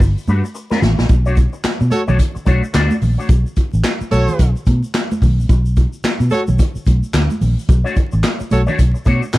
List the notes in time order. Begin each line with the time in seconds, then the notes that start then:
0.00 G1, muted clean electric guitar stroke, kick, shaker
0.18 shaker
0.28 G2 A3 D4 F#4 B4, muted conga, high conga, shaker
0.44 muted clean electric guitar stroke, shaker
0.54 muted clean electric guitar stroke, shaker
0.70 A3 D4 F#4 B4, snare, high conga, shaker
0.81 A1, muted clean electric guitar stroke, snare, high conga, low conga, shaker
0.98 A#1, muted clean electric guitar stroke, snare, shaker
1.09 B1, muted clean electric guitar stroke, kick, closed hi-hat, muted conga, shaker
1.26 A3 D4 F#4 C#5, shaker
1.37 muted clean electric guitar stroke, kick, closed hi-hat, muted conga, shaker
1.53 muted clean electric guitar stroke, shaker
1.64 muted clean electric guitar stroke, muted fingered electric bass stroke, snare, clap, closed hi-hat, shaker
1.81 B2, muted clean electric guitar stroke, shaker
1.91 F#4 A4 C#5, closed hi-hat, high conga, shaker
2.07 B1 A3 D4 F#4 C#5, low conga, shaker
2.18 muted clean electric guitar stroke, kick, closed hi-hat, muted conga, shaker
2.35 muted clean electric guitar stroke, muted fingered electric bass stroke, shaker
2.45 B1 A3 D4 F#4 C#5, kick, closed hi-hat, muted conga, high conga, shaker
2.63 muted clean electric guitar stroke, shaker
2.73 D2 A3 D4 F#4 D5, snare, clap, closed hi-hat, muted conga, shaker
2.91 high conga, shaker
3.01 A#1, muted clean electric guitar stroke, open hi-hat, low conga, shaker
3.18 A3 D4 F#4 C#5, shaker
3.29 B1, kick, closed hi-hat, shaker
3.46 shaker
3.56 kick, closed hi-hat, shaker
3.73 A1, shaker
3.84 snare, clap, closed hi-hat, shaker
4.01 muted fingered electric bass stroke, shaker
4.11 B1 F#4 A4 C#5, closed hi-hat, high conga, shaker
4.28 low conga, shaker
4.39 B1, kick, closed hi-hat, shaker
4.56 shaker
4.66 B2, kick, closed hi-hat, high conga, shaker
4.83 shaker
4.94 snare, clap, closed hi-hat, muted conga, shaker
5.11 high conga, shaker
5.22 B1, kick, open hi-hat, low conga, shaker
5.38 A#1, shaker
5.49 B1, kick, closed hi-hat, muted conga, shaker
5.66 shaker
5.76 kick, closed hi-hat, muted conga, shaker
5.93 shaker
6.04 muted fingered electric bass stroke, snare, clap, closed hi-hat, shaker
6.20 B2, shaker
6.30 F#4 A4 C#5, closed hi-hat, muted conga, high conga, shaker
6.47 B1, low conga, shaker
6.59 kick, closed hi-hat, muted conga, shaker
6.75 muted fingered electric bass stroke, shaker
6.85 B1, kick, closed hi-hat, high conga, shaker
7.03 shaker
7.14 D2, snare, clap, closed hi-hat, shaker
7.30 high conga, shaker
7.41 A#1, open hi-hat, low conga, shaker
7.59 shaker
7.68 B1, muted clean electric guitar stroke, kick, closed hi-hat, shaker
7.84 A3 D4 F#4 C#5, shaker
7.95 muted clean electric guitar stroke, kick, closed hi-hat, shaker
8.12 A1, muted clean electric guitar stroke, shaker
8.23 muted clean electric guitar stroke, snare, clap, closed hi-hat, shaker
8.39 muted clean electric guitar stroke, muted fingered electric bass stroke, shaker
8.50 B1 F#4 A4 C#5, closed hi-hat, muted conga, high conga, shaker
8.66 A3 D4 F#4 C#5, low conga, shaker
8.78 B1, muted clean electric guitar stroke, kick, closed hi-hat, shaker
8.94 muted clean electric guitar stroke, shaker
9.05 B2 A3 D4 F#4 C#5, kick, closed hi-hat, muted conga, high conga, shaker
9.22 muted clean electric guitar stroke, shaker
9.33 B2, muted clean electric guitar stroke, snare, clap, closed hi-hat, shaker